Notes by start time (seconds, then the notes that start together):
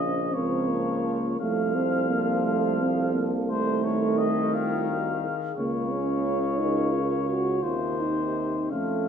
Already playing: A#1 C#3 C#4 C5 D#5
0.32 C#2 F3 C4 A#4 C#5
0.69 A#3
1.39 C2 F3 A3 A4 F5
1.75 C4
2.11 A#3
2.45 A3 F5
2.81 C4
3.15 A#3
3.49 D#3 A3 C5
3.84 C#5
4.18 D#5
4.53 F4 F5
4.87 F#4
5.24 G#4
5.57 C#2 C#3 A#3 C#5
5.91 C#4
6.58 D#4 A#4
6.93 F4
7.29 F#4
7.62 D#2 C3 F4 A#4 C5
7.99 D#4
8.71 F2 A3 C#4 A4 F5